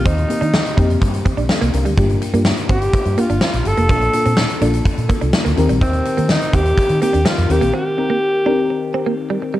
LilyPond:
<<
  \new Staff \with { instrumentName = "Alto saxophone" } { \time 4/4 \key c \dorian \tempo 4 = 125 ees'2 r2 | r4. g'4 f'8 f'8 a'8~ | a'4. r2 r8 | c'4 ees'8 g'4 g'8 f'8 g'8 |
g'2. r4 | }
  \new Staff \with { instrumentName = "FM electric piano" } { \time 4/4 \key c \dorian << { r2. <a' f''>8 <d' bes'>8~ | <d' bes'>8 r2. r8 | r1 | r1 |
r1 | } \\ { <bes c' ees' g'>16 r16 <bes c' ees' g'>8. r16 <bes c' ees' g'>4.~ <bes c' ees' g'>16 r8. | <bes d' f' g'>8. <bes d' f' g'>4. r16 <bes d' f' g'>4~ <bes d' f' g'>16 r16 | <bes d' f' a'>8 <bes d' f' a'>8. r16 <bes d' f' a'>4.~ <bes d' f' a'>16 r16 <c' ees' g' bes'>8~ | <c' ees' g' bes'>8 r16 <c' ees' g' bes'>4. r16 <c' ees' g' bes'>4 <c' ees' g' bes'>8~ |
<c' ees' g' bes'>16 r16 <c' ees' g' bes'>8. r16 <c' ees' g' bes'>4.~ <c' ees' g' bes'>16 r8. | } >> }
  \new Staff \with { instrumentName = "FM electric piano" } { \clef bass \time 4/4 \key c \dorian ees4 r2. | g,4. r2 r8 | bes,4. r2 ees8~ | ees4 r2 r8 ees8~ |
ees4 r2. | }
  \new Staff \with { instrumentName = "Clean electric guitar" } { \time 4/4 \key c \dorian c'16 r8 d'16 r8 ees'16 r8. c'16 d'16 r16 bes16 r16 g16 | g16 r8 bes16 r8 c'16 r8. bes16 d'16 c'16 r8 bes16 | bes16 r8 c'16 r8 d'16 r8. bes16 d'16 r16 bes16 r16 g16 | ees'16 r8 bes16 r8 c'16 r8. bes16 d'16 c'16 r8 bes16 |
c'16 r8 bes16 r8 d'16 r8. c'16 bes16 r16 g16 r16 g16 | }
  \new Staff \with { instrumentName = "Fingered electric bass" } { \clef bass \time 4/4 \key c \dorian ees,8 r16 ees8 r16 f,8 g,8 r16 bes,,16 r16 c,16 c,16 d,16 | g,,8 r16 g,8 r16 g,,8 r16 g,16 r16 g,,16 r16 bes,,16 g,,16 f,,16 | bes,,8 r16 bes,8 r16 bes,,8 r16 bes,16 r16 c,16 r16 d,16 ees,16 bes,,16 | ees,8 r16 ees8 r16 ees,8 r16 ees16 r16 ees,16 r16 f,16 ees,16 bes,,16 |
r1 | }
  \new DrumStaff \with { instrumentName = "Drums" } \drummode { \time 4/4 <hh bd>16 hh16 hh16 hh16 sn16 hh16 <hh bd>16 hh16 <hh bd>16 hh16 <hh bd>16 hh16 sn16 hh16 hh16 hh16 | <hh bd>16 hh16 hh16 hh16 sn16 hh16 <hh bd>16 hh16 <hh bd>16 hh16 hh16 hh16 sn16 hh16 hh16 hh16 | <hh bd>16 hh16 hh16 hh16 sn16 hh16 hh16 hh16 <hh bd>16 hh16 <hh bd>16 hh16 sn16 hh16 hh16 hh16 | <hh bd>16 hh16 hh16 hh16 sn16 hh16 <hh bd>16 hh16 <hh bd>16 hh16 hh16 hh16 sn16 hh16 hh16 hh16 |
r4 r4 r4 r4 | }
>>